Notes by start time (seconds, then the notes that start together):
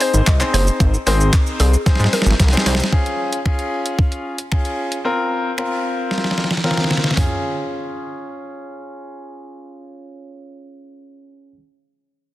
Already playing: C4 D#4 G#4 C5
0.00 C5, open hi-hat, shaker
0.14 G#1, shaker
0.27 C2 D#5, kick, clap, closed hi-hat, shaker
0.40 C4 D#4 G#4 C5, clap, shaker
0.54 F#1 C5, open hi-hat, shaker
0.67 shaker
0.80 G#1, kick, closed hi-hat, shaker
0.94 shaker
1.07 G#1 C4 D#4 G#4 A#4 C5, open hi-hat, shaker
1.20 shaker
1.33 kick, clap, closed hi-hat, shaker
1.46 shaker
1.60 C2 G#4, open hi-hat, shaker
1.74 shaker
1.86 G#2 C4 D#4 G#4 C5, kick, snare, closed hi-hat, shaker
1.95 snare
2.00 G#2, shaker
2.04 snare
2.13 A#4, snare, open hi-hat, shaker
2.22 snare
2.26 G#1, shaker
2.31 snare
2.40 C2, kick, snare, closed hi-hat, shaker
2.48 C4, snare
2.53 D#4 G#4 C5, shaker
2.57 snare
2.66 C2 C5, snare, open hi-hat, shaker
2.75 snare
2.79 shaker
2.84 snare
2.92 C#4 F4 G#4, kick
3.06 closed hi-hat
3.33 closed hi-hat
3.45 C#4 F4 G#4, finger snap, kick
3.59 closed hi-hat
3.86 closed hi-hat
3.99 kick
4.12 closed hi-hat
4.38 closed hi-hat
4.52 C#4 F4 G#4, finger snap, kick
4.65 closed hi-hat
4.92 closed hi-hat
5.05 C4 F4 A#4
5.58 C4 F4 A#4, finger snap
6.11 snare
6.18 snare
6.24 snare
6.31 snare
6.38 snare
6.44 snare
6.51 snare
6.57 snare
6.64 C4 F4 A#4, snare
6.71 snare
6.77 snare
6.84 snare
6.91 snare
6.97 snare
7.04 snare
7.11 snare
7.16 C#4 F4 G#4, kick, floor tom, open hi-hat